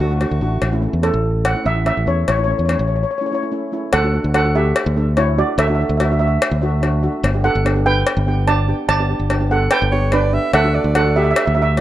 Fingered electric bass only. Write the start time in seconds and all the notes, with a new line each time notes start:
0.00 D2
0.31 D2
0.41 A1
0.62 A1
0.93 E2
1.14 A1
1.66 A1
1.97 A1
2.07 E2
2.28 A1
2.59 E2
2.79 A1
3.93 D2
4.24 D2
4.86 D2
5.58 D2
5.89 D2
6.51 D2
7.23 G1
7.55 G1
8.17 G1
8.89 G1
9.19 G1
9.82 G1
10.53 D2
10.84 D2
11.47 D2